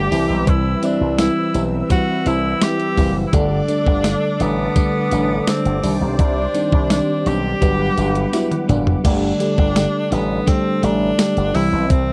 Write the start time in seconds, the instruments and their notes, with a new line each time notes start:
Already playing: fm electric piano D3 G3 A3 D4, tenor saxophone G4
0.11 slap bass C2, fm electric piano E3 G3 C4 E4, analog polysynth G3 E4 B4, analog synth pad C4 E5 E6, open hi-hat, tambourine
0.30 slap bass B1
0.47 slap bass C2, tenor saxophone E4, kick, closed hi-hat
0.82 fm electric piano E3 G3 C4 E4, tenor saxophone D4, closed hi-hat, tambourine
1.01 slap bass C2
1.18 fm electric piano E3 G3 C4 E4, tenor saxophone E4, snare, closed hi-hat, tambourine
1.54 slap bass B1, fm electric piano E3 G3 C4 E4, closed hi-hat, tambourine
1.89 fm electric piano E3 G3 C4 E4, tenor saxophone F#4, kick, closed hi-hat, tambourine
2.25 slap bass C2, fm electric piano E3 G3 C4 E4, tenor saxophone E4, closed hi-hat, tambourine
2.61 fm electric piano E3 G3 C4 E4, tenor saxophone G4, snare, closed hi-hat, tambourine
2.80 closed hi-hat
2.97 slap bass F#1, fm electric piano E3 G3 C4 E4, kick, open hi-hat, tambourine
3.27 tenor saxophone E4
3.33 slap bass G1, fm electric piano D3 G3 A3 D4, analog polysynth D4 A4, tenor saxophone D4, analog synth pad A4 D5 D6, kick, closed hi-hat, tambourine
3.68 fm electric piano D3 G3 A3 D4, closed hi-hat, tambourine
3.87 slap bass G1, kick
4.04 fm electric piano D3 G3 A3 D4, snare, closed hi-hat, tambourine
4.40 slap bass A1, fm electric piano D3 G3 A3 D4, tenor saxophone B3, closed hi-hat, tambourine
4.75 fm electric piano D3 G3 A3 D4, kick, closed hi-hat, tambourine
5.11 slap bass A1, fm electric piano D3 G3 A3 D4, closed hi-hat, tambourine
5.47 fm electric piano D3 G3 A3 D4, tenor saxophone C4, snare, closed hi-hat, tambourine
5.65 slap bass G1, closed hi-hat
5.83 slap bass C2, fm electric piano D#3 G3 C4 D4, analog polysynth D#3 D4 G4, analog synth pad C5 D5, open hi-hat, tambourine
6.01 slap bass B1
6.19 slap bass C2, tenor saxophone D4, kick, closed hi-hat, tambourine
6.54 fm electric piano D#3 G3 C4 D4, closed hi-hat, tambourine
6.72 slap bass C2, kick
6.90 fm electric piano D#3 G3 C4 D4, tenor saxophone D4, snare, closed hi-hat, tambourine
7.26 slap bass B1, fm electric piano D#3 G3 C4 D4, tenor saxophone G4, closed hi-hat, tambourine
7.61 slap bass G1, fm electric piano F#3 G3 B3 D4, analog polysynth G3 B4 F#5, analog synth pad B4 F#5, kick, closed hi-hat, tambourine
7.97 slap bass G1, fm electric piano F#3 G3 B3 D4, closed hi-hat, tambourine
8.15 closed hi-hat
8.33 fm electric piano F#3 G3 B3 E4, snare, closed hi-hat, tambourine
8.51 closed hi-hat, high tom
8.68 slap bass F#1, fm electric piano F#3 G3 B3 D4, closed hi-hat, mid tom, tambourine
8.87 floor tom
9.04 slap bass G1, fm electric piano D3 G3 A3 D4 G4, analog polysynth D4 A4, tenor saxophone D4, kick, closed hi-hat, crash, tambourine
9.40 fm electric piano D3 G3 A3 D4 G4, closed hi-hat, tambourine
9.58 slap bass G1, kick
9.75 fm electric piano D3 G3 A3 D4 G4, snare, closed hi-hat, tambourine
10.11 slap bass A1, fm electric piano D3 G3 A3 D4 G4, tenor saxophone B3, closed hi-hat, tambourine
10.46 fm electric piano D3 G3 A3 D4 G4, tenor saxophone C4, kick, closed hi-hat, tambourine
10.82 slap bass A1, fm electric piano D3 G3 A3 D4 G4, tenor saxophone D4, closed hi-hat, tambourine
11.18 fm electric piano D3 G3 A3 D4 G4, snare, closed hi-hat, tambourine
11.37 slap bass G1, closed hi-hat
11.54 slap bass C2, fm electric piano E3 G3 C4 E4 G4, analog polysynth E3 C4 G4, tenor saxophone E4, open hi-hat
11.72 slap bass B1
11.90 slap bass C2, tenor saxophone C4, kick, closed hi-hat, tambourine